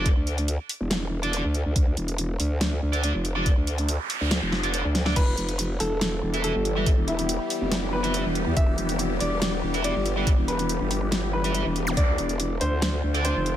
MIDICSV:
0, 0, Header, 1, 8, 480
1, 0, Start_track
1, 0, Tempo, 425532
1, 63, Time_signature, 4, 2, 24, 8
1, 15302, End_track
2, 0, Start_track
2, 0, Title_t, "Grand piano"
2, 0, Program_c, 0, 0
2, 5823, Note_on_c, 0, 71, 96
2, 6451, Note_off_c, 0, 71, 0
2, 6543, Note_on_c, 0, 69, 97
2, 7171, Note_off_c, 0, 69, 0
2, 7264, Note_on_c, 0, 69, 94
2, 7891, Note_off_c, 0, 69, 0
2, 7984, Note_on_c, 0, 64, 89
2, 8851, Note_off_c, 0, 64, 0
2, 8943, Note_on_c, 0, 71, 93
2, 9571, Note_off_c, 0, 71, 0
2, 9663, Note_on_c, 0, 76, 99
2, 10291, Note_off_c, 0, 76, 0
2, 10382, Note_on_c, 0, 74, 96
2, 11010, Note_off_c, 0, 74, 0
2, 11102, Note_on_c, 0, 74, 94
2, 11730, Note_off_c, 0, 74, 0
2, 11822, Note_on_c, 0, 71, 89
2, 12690, Note_off_c, 0, 71, 0
2, 12782, Note_on_c, 0, 71, 93
2, 13410, Note_off_c, 0, 71, 0
2, 13503, Note_on_c, 0, 74, 99
2, 14131, Note_off_c, 0, 74, 0
2, 14223, Note_on_c, 0, 72, 94
2, 14851, Note_off_c, 0, 72, 0
2, 14944, Note_on_c, 0, 72, 95
2, 15302, Note_off_c, 0, 72, 0
2, 15302, End_track
3, 0, Start_track
3, 0, Title_t, "Distorted electric guitar"
3, 0, Program_c, 1, 30
3, 1385, Note_on_c, 1, 74, 100
3, 1390, Note_on_c, 1, 69, 80
3, 1394, Note_on_c, 1, 62, 87
3, 1593, Note_off_c, 1, 62, 0
3, 1593, Note_off_c, 1, 69, 0
3, 1593, Note_off_c, 1, 74, 0
3, 3305, Note_on_c, 1, 74, 111
3, 3311, Note_on_c, 1, 69, 68
3, 3314, Note_on_c, 1, 62, 83
3, 3513, Note_off_c, 1, 62, 0
3, 3513, Note_off_c, 1, 69, 0
3, 3513, Note_off_c, 1, 74, 0
3, 3783, Note_on_c, 1, 74, 81
3, 3790, Note_on_c, 1, 69, 68
3, 3794, Note_on_c, 1, 62, 65
3, 3912, Note_off_c, 1, 62, 0
3, 3912, Note_off_c, 1, 69, 0
3, 3912, Note_off_c, 1, 74, 0
3, 5227, Note_on_c, 1, 74, 103
3, 5229, Note_on_c, 1, 69, 76
3, 5234, Note_on_c, 1, 62, 73
3, 5433, Note_off_c, 1, 62, 0
3, 5433, Note_off_c, 1, 69, 0
3, 5433, Note_off_c, 1, 74, 0
3, 5703, Note_on_c, 1, 74, 84
3, 5709, Note_on_c, 1, 69, 61
3, 5716, Note_on_c, 1, 62, 65
3, 5809, Note_off_c, 1, 62, 0
3, 5809, Note_off_c, 1, 69, 0
3, 5809, Note_off_c, 1, 74, 0
3, 7145, Note_on_c, 1, 64, 85
3, 7148, Note_on_c, 1, 76, 94
3, 7153, Note_on_c, 1, 71, 74
3, 7353, Note_off_c, 1, 64, 0
3, 7353, Note_off_c, 1, 71, 0
3, 7353, Note_off_c, 1, 76, 0
3, 7625, Note_on_c, 1, 64, 71
3, 7630, Note_on_c, 1, 76, 79
3, 7635, Note_on_c, 1, 71, 57
3, 7752, Note_off_c, 1, 76, 0
3, 7753, Note_off_c, 1, 64, 0
3, 7753, Note_off_c, 1, 71, 0
3, 9065, Note_on_c, 1, 64, 93
3, 9070, Note_on_c, 1, 76, 93
3, 9075, Note_on_c, 1, 71, 75
3, 9273, Note_off_c, 1, 64, 0
3, 9273, Note_off_c, 1, 71, 0
3, 9273, Note_off_c, 1, 76, 0
3, 10984, Note_on_c, 1, 64, 98
3, 10989, Note_on_c, 1, 76, 88
3, 10995, Note_on_c, 1, 71, 73
3, 11193, Note_off_c, 1, 64, 0
3, 11193, Note_off_c, 1, 71, 0
3, 11193, Note_off_c, 1, 76, 0
3, 11465, Note_on_c, 1, 64, 79
3, 11470, Note_on_c, 1, 76, 71
3, 11477, Note_on_c, 1, 71, 67
3, 11592, Note_off_c, 1, 71, 0
3, 11593, Note_off_c, 1, 64, 0
3, 11593, Note_off_c, 1, 76, 0
3, 12906, Note_on_c, 1, 64, 96
3, 12909, Note_on_c, 1, 76, 105
3, 12913, Note_on_c, 1, 71, 73
3, 13113, Note_off_c, 1, 64, 0
3, 13113, Note_off_c, 1, 71, 0
3, 13113, Note_off_c, 1, 76, 0
3, 14825, Note_on_c, 1, 74, 103
3, 14829, Note_on_c, 1, 69, 75
3, 14833, Note_on_c, 1, 62, 82
3, 15033, Note_off_c, 1, 62, 0
3, 15033, Note_off_c, 1, 69, 0
3, 15033, Note_off_c, 1, 74, 0
3, 15302, End_track
4, 0, Start_track
4, 0, Title_t, "Ambient pad"
4, 0, Program_c, 2, 92
4, 5823, Note_on_c, 2, 52, 81
4, 5823, Note_on_c, 2, 55, 76
4, 5823, Note_on_c, 2, 59, 75
4, 5823, Note_on_c, 2, 67, 92
4, 13458, Note_off_c, 2, 52, 0
4, 13458, Note_off_c, 2, 55, 0
4, 13458, Note_off_c, 2, 59, 0
4, 13458, Note_off_c, 2, 67, 0
4, 13504, Note_on_c, 2, 50, 82
4, 13504, Note_on_c, 2, 57, 78
4, 13504, Note_on_c, 2, 60, 79
4, 13504, Note_on_c, 2, 65, 96
4, 15302, Note_off_c, 2, 50, 0
4, 15302, Note_off_c, 2, 57, 0
4, 15302, Note_off_c, 2, 60, 0
4, 15302, Note_off_c, 2, 65, 0
4, 15302, End_track
5, 0, Start_track
5, 0, Title_t, "Wobble bass"
5, 0, Program_c, 3, 39
5, 0, Note_on_c, 3, 29, 96
5, 168, Note_off_c, 3, 29, 0
5, 188, Note_on_c, 3, 38, 97
5, 648, Note_off_c, 3, 38, 0
5, 908, Note_on_c, 3, 28, 101
5, 1608, Note_off_c, 3, 28, 0
5, 1628, Note_on_c, 3, 38, 97
5, 1848, Note_off_c, 3, 38, 0
5, 1868, Note_on_c, 3, 38, 98
5, 1965, Note_off_c, 3, 38, 0
5, 1983, Note_on_c, 3, 38, 106
5, 2205, Note_off_c, 3, 38, 0
5, 2222, Note_on_c, 3, 28, 104
5, 2684, Note_off_c, 3, 28, 0
5, 2703, Note_on_c, 3, 38, 99
5, 3164, Note_off_c, 3, 38, 0
5, 3183, Note_on_c, 3, 38, 99
5, 3528, Note_off_c, 3, 38, 0
5, 3548, Note_on_c, 3, 29, 93
5, 4008, Note_off_c, 3, 29, 0
5, 4028, Note_on_c, 3, 38, 96
5, 4488, Note_off_c, 3, 38, 0
5, 4748, Note_on_c, 3, 38, 96
5, 4968, Note_off_c, 3, 38, 0
5, 4988, Note_on_c, 3, 29, 97
5, 5448, Note_off_c, 3, 29, 0
5, 5468, Note_on_c, 3, 38, 97
5, 5805, Note_off_c, 3, 38, 0
5, 5823, Note_on_c, 3, 28, 100
5, 6045, Note_off_c, 3, 28, 0
5, 6063, Note_on_c, 3, 29, 104
5, 6524, Note_off_c, 3, 29, 0
5, 6543, Note_on_c, 3, 28, 99
5, 7004, Note_off_c, 3, 28, 0
5, 7023, Note_on_c, 3, 28, 96
5, 7368, Note_off_c, 3, 28, 0
5, 7388, Note_on_c, 3, 31, 92
5, 7848, Note_off_c, 3, 31, 0
5, 7868, Note_on_c, 3, 28, 97
5, 8328, Note_off_c, 3, 28, 0
5, 8587, Note_on_c, 3, 29, 100
5, 9288, Note_off_c, 3, 29, 0
5, 9308, Note_on_c, 3, 28, 97
5, 9528, Note_off_c, 3, 28, 0
5, 9548, Note_on_c, 3, 40, 98
5, 9645, Note_off_c, 3, 40, 0
5, 9663, Note_on_c, 3, 28, 104
5, 9885, Note_off_c, 3, 28, 0
5, 9903, Note_on_c, 3, 29, 107
5, 10365, Note_off_c, 3, 29, 0
5, 10383, Note_on_c, 3, 28, 101
5, 10845, Note_off_c, 3, 28, 0
5, 10863, Note_on_c, 3, 28, 100
5, 11208, Note_off_c, 3, 28, 0
5, 11228, Note_on_c, 3, 31, 93
5, 11688, Note_off_c, 3, 31, 0
5, 11708, Note_on_c, 3, 28, 97
5, 12168, Note_off_c, 3, 28, 0
5, 12188, Note_on_c, 3, 31, 99
5, 13128, Note_off_c, 3, 31, 0
5, 13148, Note_on_c, 3, 28, 100
5, 13485, Note_off_c, 3, 28, 0
5, 13503, Note_on_c, 3, 38, 104
5, 13725, Note_off_c, 3, 38, 0
5, 13743, Note_on_c, 3, 28, 102
5, 14205, Note_off_c, 3, 28, 0
5, 14223, Note_on_c, 3, 38, 98
5, 14685, Note_off_c, 3, 38, 0
5, 14703, Note_on_c, 3, 38, 93
5, 15048, Note_off_c, 3, 38, 0
5, 15068, Note_on_c, 3, 29, 98
5, 15302, Note_off_c, 3, 29, 0
5, 15302, End_track
6, 0, Start_track
6, 0, Title_t, "Noise sweep"
6, 0, Program_c, 4, 103
6, 3903, Note_on_c, 4, 60, 62
6, 5823, Note_off_c, 4, 60, 0
6, 15302, End_track
7, 0, Start_track
7, 0, Title_t, "Zap"
7, 0, Program_c, 5, 103
7, 13388, Note_on_c, 5, 60, 64
7, 13503, Note_off_c, 5, 60, 0
7, 15302, End_track
8, 0, Start_track
8, 0, Title_t, "Drums"
8, 63, Note_on_c, 9, 36, 120
8, 64, Note_on_c, 9, 42, 72
8, 176, Note_off_c, 9, 36, 0
8, 177, Note_off_c, 9, 42, 0
8, 303, Note_on_c, 9, 42, 50
8, 416, Note_off_c, 9, 42, 0
8, 428, Note_on_c, 9, 42, 51
8, 541, Note_off_c, 9, 42, 0
8, 543, Note_on_c, 9, 42, 78
8, 656, Note_off_c, 9, 42, 0
8, 783, Note_on_c, 9, 46, 95
8, 896, Note_off_c, 9, 46, 0
8, 1023, Note_on_c, 9, 38, 113
8, 1023, Note_on_c, 9, 42, 76
8, 1136, Note_off_c, 9, 38, 0
8, 1136, Note_off_c, 9, 42, 0
8, 1388, Note_on_c, 9, 42, 51
8, 1501, Note_off_c, 9, 42, 0
8, 1503, Note_on_c, 9, 42, 76
8, 1616, Note_off_c, 9, 42, 0
8, 1743, Note_on_c, 9, 42, 53
8, 1856, Note_off_c, 9, 42, 0
8, 1983, Note_on_c, 9, 36, 115
8, 1983, Note_on_c, 9, 42, 79
8, 2096, Note_off_c, 9, 36, 0
8, 2096, Note_off_c, 9, 42, 0
8, 2223, Note_on_c, 9, 42, 52
8, 2336, Note_off_c, 9, 42, 0
8, 2348, Note_on_c, 9, 42, 53
8, 2461, Note_off_c, 9, 42, 0
8, 2463, Note_on_c, 9, 42, 80
8, 2576, Note_off_c, 9, 42, 0
8, 2703, Note_on_c, 9, 46, 95
8, 2816, Note_off_c, 9, 46, 0
8, 2943, Note_on_c, 9, 38, 113
8, 2943, Note_on_c, 9, 42, 74
8, 3056, Note_off_c, 9, 38, 0
8, 3056, Note_off_c, 9, 42, 0
8, 3308, Note_on_c, 9, 42, 52
8, 3421, Note_off_c, 9, 42, 0
8, 3423, Note_on_c, 9, 42, 79
8, 3536, Note_off_c, 9, 42, 0
8, 3663, Note_on_c, 9, 42, 54
8, 3776, Note_off_c, 9, 42, 0
8, 3903, Note_on_c, 9, 36, 114
8, 3903, Note_on_c, 9, 42, 79
8, 4016, Note_off_c, 9, 36, 0
8, 4016, Note_off_c, 9, 42, 0
8, 4143, Note_on_c, 9, 42, 56
8, 4256, Note_off_c, 9, 42, 0
8, 4267, Note_on_c, 9, 42, 52
8, 4380, Note_off_c, 9, 42, 0
8, 4383, Note_on_c, 9, 42, 84
8, 4496, Note_off_c, 9, 42, 0
8, 4623, Note_on_c, 9, 46, 97
8, 4735, Note_off_c, 9, 46, 0
8, 4863, Note_on_c, 9, 38, 110
8, 4863, Note_on_c, 9, 42, 80
8, 4976, Note_off_c, 9, 38, 0
8, 4976, Note_off_c, 9, 42, 0
8, 5103, Note_on_c, 9, 38, 60
8, 5216, Note_off_c, 9, 38, 0
8, 5227, Note_on_c, 9, 42, 52
8, 5340, Note_off_c, 9, 42, 0
8, 5343, Note_on_c, 9, 42, 84
8, 5456, Note_off_c, 9, 42, 0
8, 5583, Note_on_c, 9, 38, 66
8, 5583, Note_on_c, 9, 42, 56
8, 5696, Note_off_c, 9, 38, 0
8, 5696, Note_off_c, 9, 42, 0
8, 5707, Note_on_c, 9, 38, 69
8, 5820, Note_off_c, 9, 38, 0
8, 5823, Note_on_c, 9, 36, 121
8, 5823, Note_on_c, 9, 42, 81
8, 5823, Note_on_c, 9, 49, 76
8, 5936, Note_off_c, 9, 36, 0
8, 5936, Note_off_c, 9, 42, 0
8, 5936, Note_off_c, 9, 49, 0
8, 6063, Note_on_c, 9, 42, 55
8, 6176, Note_off_c, 9, 42, 0
8, 6188, Note_on_c, 9, 42, 55
8, 6301, Note_off_c, 9, 42, 0
8, 6303, Note_on_c, 9, 42, 86
8, 6416, Note_off_c, 9, 42, 0
8, 6543, Note_on_c, 9, 46, 94
8, 6656, Note_off_c, 9, 46, 0
8, 6783, Note_on_c, 9, 38, 119
8, 6783, Note_on_c, 9, 42, 81
8, 6896, Note_off_c, 9, 38, 0
8, 6896, Note_off_c, 9, 42, 0
8, 7148, Note_on_c, 9, 42, 55
8, 7260, Note_off_c, 9, 42, 0
8, 7263, Note_on_c, 9, 42, 86
8, 7376, Note_off_c, 9, 42, 0
8, 7503, Note_on_c, 9, 42, 57
8, 7616, Note_off_c, 9, 42, 0
8, 7743, Note_on_c, 9, 36, 127
8, 7743, Note_on_c, 9, 42, 79
8, 7856, Note_off_c, 9, 36, 0
8, 7856, Note_off_c, 9, 42, 0
8, 7983, Note_on_c, 9, 42, 56
8, 8096, Note_off_c, 9, 42, 0
8, 8108, Note_on_c, 9, 42, 55
8, 8220, Note_off_c, 9, 42, 0
8, 8223, Note_on_c, 9, 42, 86
8, 8336, Note_off_c, 9, 42, 0
8, 8463, Note_on_c, 9, 46, 93
8, 8576, Note_off_c, 9, 46, 0
8, 8703, Note_on_c, 9, 38, 118
8, 8703, Note_on_c, 9, 42, 81
8, 8816, Note_off_c, 9, 38, 0
8, 8816, Note_off_c, 9, 42, 0
8, 9068, Note_on_c, 9, 42, 54
8, 9180, Note_off_c, 9, 42, 0
8, 9183, Note_on_c, 9, 42, 84
8, 9296, Note_off_c, 9, 42, 0
8, 9423, Note_on_c, 9, 42, 58
8, 9536, Note_off_c, 9, 42, 0
8, 9663, Note_on_c, 9, 36, 127
8, 9663, Note_on_c, 9, 42, 77
8, 9776, Note_off_c, 9, 36, 0
8, 9776, Note_off_c, 9, 42, 0
8, 9903, Note_on_c, 9, 42, 54
8, 10016, Note_off_c, 9, 42, 0
8, 10027, Note_on_c, 9, 42, 55
8, 10140, Note_off_c, 9, 42, 0
8, 10143, Note_on_c, 9, 42, 83
8, 10256, Note_off_c, 9, 42, 0
8, 10383, Note_on_c, 9, 46, 88
8, 10495, Note_off_c, 9, 46, 0
8, 10623, Note_on_c, 9, 38, 123
8, 10623, Note_on_c, 9, 42, 80
8, 10735, Note_off_c, 9, 38, 0
8, 10735, Note_off_c, 9, 42, 0
8, 10987, Note_on_c, 9, 42, 50
8, 11100, Note_off_c, 9, 42, 0
8, 11103, Note_on_c, 9, 42, 82
8, 11216, Note_off_c, 9, 42, 0
8, 11343, Note_on_c, 9, 42, 55
8, 11456, Note_off_c, 9, 42, 0
8, 11583, Note_on_c, 9, 36, 125
8, 11583, Note_on_c, 9, 42, 78
8, 11696, Note_off_c, 9, 36, 0
8, 11696, Note_off_c, 9, 42, 0
8, 11823, Note_on_c, 9, 42, 52
8, 11936, Note_off_c, 9, 42, 0
8, 11948, Note_on_c, 9, 42, 55
8, 12060, Note_off_c, 9, 42, 0
8, 12063, Note_on_c, 9, 42, 83
8, 12176, Note_off_c, 9, 42, 0
8, 12303, Note_on_c, 9, 46, 89
8, 12416, Note_off_c, 9, 46, 0
8, 12543, Note_on_c, 9, 38, 118
8, 12543, Note_on_c, 9, 42, 81
8, 12656, Note_off_c, 9, 38, 0
8, 12656, Note_off_c, 9, 42, 0
8, 12908, Note_on_c, 9, 42, 52
8, 13021, Note_off_c, 9, 42, 0
8, 13023, Note_on_c, 9, 42, 81
8, 13136, Note_off_c, 9, 42, 0
8, 13263, Note_on_c, 9, 42, 53
8, 13376, Note_off_c, 9, 42, 0
8, 13503, Note_on_c, 9, 36, 121
8, 13503, Note_on_c, 9, 42, 76
8, 13616, Note_off_c, 9, 36, 0
8, 13616, Note_off_c, 9, 42, 0
8, 13743, Note_on_c, 9, 42, 51
8, 13856, Note_off_c, 9, 42, 0
8, 13867, Note_on_c, 9, 42, 53
8, 13980, Note_off_c, 9, 42, 0
8, 13983, Note_on_c, 9, 42, 80
8, 14095, Note_off_c, 9, 42, 0
8, 14223, Note_on_c, 9, 46, 90
8, 14336, Note_off_c, 9, 46, 0
8, 14463, Note_on_c, 9, 38, 120
8, 14463, Note_on_c, 9, 42, 73
8, 14576, Note_off_c, 9, 38, 0
8, 14576, Note_off_c, 9, 42, 0
8, 14828, Note_on_c, 9, 42, 48
8, 14940, Note_off_c, 9, 42, 0
8, 14943, Note_on_c, 9, 42, 81
8, 15056, Note_off_c, 9, 42, 0
8, 15183, Note_on_c, 9, 42, 52
8, 15296, Note_off_c, 9, 42, 0
8, 15302, End_track
0, 0, End_of_file